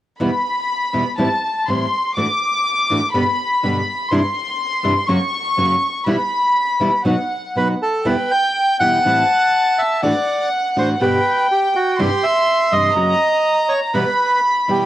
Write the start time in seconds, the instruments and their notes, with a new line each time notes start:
0.20 nylon-string guitar E2 B2 E3 G3 B3 E4, violin section B5
0.93 nylon-string guitar E2 B2 E3 G3 B3 E4
1.18 nylon-string guitar A2 E3 G3 C4 E4, violin section A5
1.67 nylon-string guitar A2 E3 G3 C4 E4, violin section C6
2.16 nylon-string guitar A2 E3 A3 D4 F#4, violin section D6
2.90 nylon-string guitar A2 E3 A3 D4 F#4
3.14 nylon-string guitar G2 B2 D3 G3 B3 G4, violin section B5
3.63 nylon-string guitar G2 B2 D3 G3 B3 G4
4.11 nylon-string guitar G2 C3 E3 G3 D4 E4, violin section C6
4.83 nylon-string guitar G2 C3 E3 G3 D4 E4
5.08 nylon-string guitar F#2 C#3 F#3 A#3 C#4 F#4, violin section C#6
5.57 nylon-string guitar F#2 C#3 F#3 A#3 C#4 F#4
6.06 nylon-string guitar B2 E3 G3 B3 E4, violin section B5
6.80 nylon-string guitar B2 E3 G3 B3 E4
7.05 nylon-string guitar B2 F#3 B3 D#4 F#4, violin section F#5
7.55 nylon-string guitar B2 F#3 B3 D#4 F#4, bandoneon B4
7.82 bandoneon A4
8.05 nylon-string guitar E2 B2 E3 G3 B3 E4, bandoneon B4, violin section G5
8.31 bandoneon G5
8.80 nylon-string guitar E2 B2 E3 G3 B3 E4, bandoneon F#5
9.05 nylon-string guitar A2 E3 G3 C4 E4, violin section A5
9.79 bandoneon E5
10.03 nylon-string guitar A2 E3 A3 D4 F#4, bandoneon D5, violin section F#5
10.76 nylon-string guitar A2 E3 A3 D4 F#4, bandoneon C5
11.00 nylon-string guitar G2 B2 D3 G3 B3 G4, bandoneon B4, violin section G5
11.51 bandoneon G4
11.76 bandoneon F#4
11.99 nylon-string guitar G2 C3 E3 G3 D4 E4, bandoneon G4, violin section C6
12.23 bandoneon E5
12.72 nylon-string guitar G2 C3 E3 G3 D4 E4, bandoneon D#5
12.95 nylon-string guitar F#2 C#3 F#3 A#3 C#4 F#4, violin section A#5
13.69 bandoneon C#5
13.94 nylon-string guitar B2 E3 G3 B3 E4, bandoneon B4, violin section B5
14.68 nylon-string guitar B2 E3 G3 B3 E4, bandoneon G4